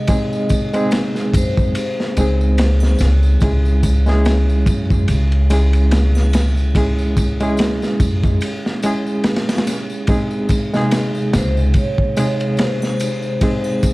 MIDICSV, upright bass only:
0, 0, Header, 1, 2, 480
1, 0, Start_track
1, 0, Key_signature, 4, "minor"
1, 0, Tempo, 833333
1, 50, Time_signature, 4, 2, 24, 8
1, 8026, End_track
2, 0, Start_track
2, 0, Title_t, "Upright bass"
2, 0, Program_c, 0, 32
2, 771, Note_on_c, 0, 42, 85
2, 985, Note_off_c, 0, 42, 0
2, 1250, Note_on_c, 0, 37, 83
2, 1710, Note_off_c, 0, 37, 0
2, 1730, Note_on_c, 0, 37, 87
2, 1945, Note_off_c, 0, 37, 0
2, 1968, Note_on_c, 0, 37, 81
2, 2669, Note_off_c, 0, 37, 0
2, 2686, Note_on_c, 0, 42, 86
2, 2903, Note_off_c, 0, 42, 0
2, 2930, Note_on_c, 0, 37, 86
2, 4480, Note_off_c, 0, 37, 0
2, 4606, Note_on_c, 0, 42, 85
2, 4823, Note_off_c, 0, 42, 0
2, 6530, Note_on_c, 0, 37, 90
2, 6745, Note_off_c, 0, 37, 0
2, 8026, End_track
0, 0, End_of_file